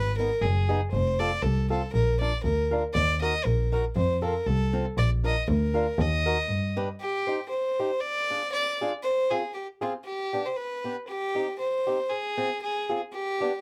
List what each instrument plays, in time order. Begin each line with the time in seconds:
Already playing: double bass G#1, fiddle B4
0.18 steel-string acoustic guitar B3 D#4 G#4, fiddle A#4
0.41 double bass F#1, fiddle G#4
0.69 steel-string acoustic guitar B3 D#4 G#4
0.91 double bass F1, fiddle C5
1.19 steel-string acoustic guitar C4 F4 A4, fiddle D5
1.42 double bass C2, fiddle A4
1.70 steel-string acoustic guitar C4 F4 A4, fiddle A4
1.93 double bass A#1, fiddle A#4
2.20 steel-string acoustic guitar D4 F4 A#4, fiddle D5
2.44 double bass D2, fiddle A#4
2.71 steel-string acoustic guitar D4 F4 A#4
2.94 double bass D#2, fiddle D5
3.22 steel-string acoustic guitar D#4 F#4 A#4, fiddle D#5
3.45 double bass A#1, fiddle A#4
3.72 steel-string acoustic guitar D#4 F#4 A#4, fiddle A#4
3.95 double bass F2, fiddle C5
4.22 steel-string acoustic guitar C4 F4 A4, fiddle A#4
4.46 double bass C2, fiddle A4
4.73 steel-string acoustic guitar C4 F4 A4
4.97 double bass A#1, fiddle D5
5.24 steel-string acoustic guitar D4 F4 A#4, fiddle D#5
5.48 double bass D2, fiddle A#4
5.74 steel-string acoustic guitar D4 F4 A#4
5.99 double bass D#2, fiddle D#5
6.26 steel-string acoustic guitar D#4 F#4 A#4
6.49 double bass G2
6.76 steel-string acoustic guitar D4 G4 B4
7.00 fiddle G4
7.27 steel-string acoustic guitar D#4 G4 C5
7.50 fiddle C5
7.80 steel-string acoustic guitar D#4 G4 C5
8.01 fiddle D5
8.30 steel-string acoustic guitar D4 F4 G#4
8.52 fiddle D5
8.81 steel-string acoustic guitar D4 F4 G#4
9.03 fiddle C5
9.31 steel-string acoustic guitar C4 F4 G#4, fiddle G#4
9.54 fiddle G4
9.81 steel-string acoustic guitar C4 F4 G#4, fiddle F4
10.04 fiddle G4
10.33 steel-string acoustic guitar B3 D4 G4
10.46 fiddle C5
10.57 fiddle B4
10.84 steel-string acoustic guitar B3 D4 G4
11.08 fiddle G4
11.35 steel-string acoustic guitar C4 D#4 G4
11.60 fiddle C5
11.87 steel-string acoustic guitar C4 D#4 G4
12.10 fiddle G#4
12.37 steel-string acoustic guitar C4 F4 G#4
12.62 fiddle G#4
12.89 steel-string acoustic guitar C4 F4 G#4
13.13 fiddle G4
13.41 steel-string acoustic guitar B3 D4 G4